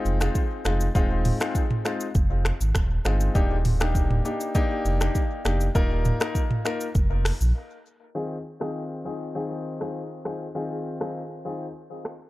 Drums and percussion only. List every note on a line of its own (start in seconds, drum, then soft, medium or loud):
0.05 shaker medium
0.21 finger snap medium
0.21 cross-stick medium
0.21 shaker medium
0.35 kick medium
0.35 shaker medium
0.65 finger snap medium
0.65 cross-stick medium
0.65 shaker medium
0.81 shaker medium
0.95 kick loud
0.95 shaker medium
1.25 mid tom loud
1.25 open hi-hat soft
1.25 shaker medium
1.40 finger snap medium
1.40 cross-stick loud
1.40 shaker medium
1.55 kick loud
1.55 shaker medium
1.71 mid tom loud
1.85 finger snap medium
1.85 cross-stick medium
1.85 shaker medium
2.00 shaker medium
2.15 kick loud
2.15 shaker medium
2.45 finger snap medium
2.45 cross-stick loud
2.45 shaker medium
2.61 shaker medium
2.75 finger snap medium
2.75 kick medium
2.75 cross-stick loud
2.75 shaker medium
3.05 finger snap medium
3.05 cross-stick medium
3.05 shaker medium
3.21 shaker medium
3.35 kick loud
3.35 shaker medium
3.65 mid tom loud
3.65 open hi-hat soft
3.65 shaker soft
3.80 finger snap medium
3.80 cross-stick loud
3.80 shaker medium
3.95 kick loud
3.95 shaker medium
4.11 mid tom loud
4.25 shaker medium
4.40 shaker medium
4.55 kick loud
4.55 shaker medium
4.85 shaker medium
5.01 finger snap medium
5.01 cross-stick loud
5.01 shaker medium
5.15 kick medium
5.15 shaker medium
5.45 finger snap medium
5.45 cross-stick medium
5.45 shaker medium
5.61 shaker medium
5.75 kick loud
5.75 shaker medium
6.05 mid tom loud
6.05 shaker soft
6.20 finger snap medium
6.20 cross-stick loud
6.20 shaker medium
6.35 kick loud
6.35 shaker medium
6.51 mid tom loud
6.65 finger snap medium
6.65 cross-stick medium
6.65 shaker medium
6.81 shaker medium
6.95 kick loud
6.95 shaker medium
7.25 finger snap medium
7.25 cross-stick loud
7.25 open hi-hat medium
7.25 shaker medium
7.41 shaker medium
8.15 shaker medium
8.45 shaker soft
8.61 finger snap medium
8.61 cross-stick loud
8.75 shaker medium
9.05 shaker medium
9.20 shaker medium
9.35 shaker medium
9.65 shaker soft
9.81 finger snap medium
9.81 cross-stick medium
9.95 shaker medium
10.25 finger snap medium
10.25 cross-stick medium
10.41 shaker medium
10.55 shaker medium
10.85 shaker soft
11.01 finger snap medium
11.01 cross-stick loud
11.15 shaker medium
11.45 shaker soft
11.60 shaker medium
11.75 shaker medium
12.05 finger snap medium
12.05 cross-stick medium
12.05 shaker soft
12.21 shaker medium